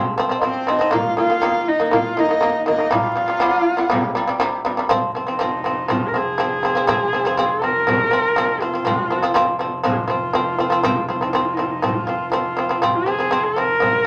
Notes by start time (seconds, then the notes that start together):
Already playing: F3 C4
0.18 F3 C4
0.29 F3 C4
0.38 F3 D#5
0.43 C4 C5, frame drum
0.67 F3 C4 D#4 D#5, frame drum
0.79 F3 C4, frame drum
0.91 D#3 A#3 F4 F5, frame drum
1.17 D#3 A#3 F4 G#5
1.22 F5
1.30 D#3 A#3
1.42 D#3 A#3, frame drum
1.68 D#4 D#5, frame drum
1.80 D#3 A#3, frame drum
1.91 D#3 A#3 F4 F5, frame drum
2.17 D#3 A#3 D#4 D#5
2.29 D#3 A#3
2.41 D#3 A#3, frame drum
2.66 D#3 A#3 D#5, frame drum
2.70 D#4
2.79 D#3 A#3, frame drum
2.90 C3 G3 F5, frame drum
2.94 F4
3.16 C3 G3
3.28 C3 G3
3.40 C3 G3 F#5, frame drum
3.57 F5
3.67 frame drum
3.73 C3 F#5
3.78 G3, frame drum
3.87 C3 G3 F5
3.92 frame drum
4.15 C3 G3
4.28 C3 G3
4.40 C3 G3, frame drum
4.65 C3 G3, frame drum
4.77 C3 G3, frame drum
4.89 F1 F3 C4, frame drum
5.15 F3 C4, frame drum
5.26 F3 C4 D#4
5.39 F3 C4, frame drum
5.64 F3 C4, frame drum
5.88 F3 C4 F4, frame drum
6.08 A#4
6.14 F3 C4 G#4, frame drum
6.38 F3 C4, frame drum
6.63 F3 C4, frame drum
6.75 F3 C4
6.87 F3 C4, frame drum
7.13 F3 C4, frame drum
7.25 F3 C4
7.37 F3 C4, frame drum
7.49 A#4
7.62 F3 C4, frame drum
7.87 F3 C4, frame drum
8.11 F3 C4, frame drum
8.36 F3 C4, frame drum
8.61 F3 C4 F4, frame drum
8.74 F3 C4
8.85 F1 F3 C4, frame drum
9.10 F3 C4, frame drum
9.22 F3 C4
9.34 F3 C4, frame drum
9.59 F3 C4, frame drum
9.84 F3 C4, frame drum
9.90 G#4
9.97 F4
10.08 F3 C4, frame drum
10.33 F3 C4, frame drum
10.58 F3 C4, frame drum
10.70 F3 C4
10.83 F3 C4, frame drum
11.08 F3 C4, frame drum
11.21 F3 C4 D#4
11.28 F4
11.33 F3 C4 D#4, frame drum
11.45 F4
11.53 F3 D#4
11.58 C4, frame drum
11.62 F4
11.70 D#4
11.82 F3 C4, frame drum
11.95 F4
12.07 F3 C4, frame drum
12.32 F3 C4 F4, frame drum
12.57 F3 C4, frame drum
12.69 F3 C4
12.82 F1 F3 C4, frame drum
12.95 G#4
13.06 F3 C4, frame drum
13.19 F3 C4
13.31 F3 C4, frame drum
13.44 A#4
13.56 F3 C4, frame drum
13.80 F3 C4, frame drum